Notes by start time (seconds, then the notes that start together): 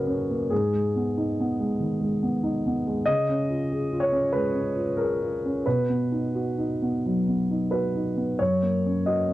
Already playing: C#3 A#3 C#4 F#4 A#4 B4 C#5 D#5
0.07 C#4
0.31 A#3
0.50 G#2 G#4
0.73 G#3
0.96 B3
1.17 D#4
1.40 B3
1.59 G#3
1.80 D#3
2.00 G#3
2.23 B3
2.43 D#4
2.66 B3
2.87 G#3
3.06 C#3 D#5
3.29 C#4
3.50 F4
3.72 G#4
3.92 F4
4.00 C#5
4.12 C#4
4.33 G#3 B4
4.55 C#4
4.76 F4
4.97 G#4 A#4
5.22 F4
5.45 C#4
5.66 B2 B4
5.89 B3
6.12 D#4
6.35 F#4
6.58 D#4
6.82 B3
7.06 F#3
7.28 B3
7.51 D#4
7.71 F#4 B4
7.95 D#4
8.16 B3
8.39 F#2 C#5
8.63 A#3
8.86 C#4
9.06 F#4 D#5
9.29 C#4